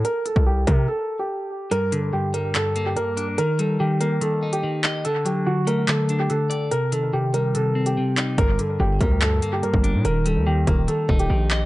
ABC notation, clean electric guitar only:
X:1
M:4/4
L:1/8
Q:1/4=144
K:Gm
V:1 name="Clean electric guitar" clef=bass
z8 | G,, D, G,, G, G,, B, G,, D | E, G, E, B, E, E E, e | D, ^F, D, A, D, D D, d |
C, E, C, G, C, C C, E | G,, D, G,, G, G,, B, G,, D | E, G, E, B, E, E E, e |]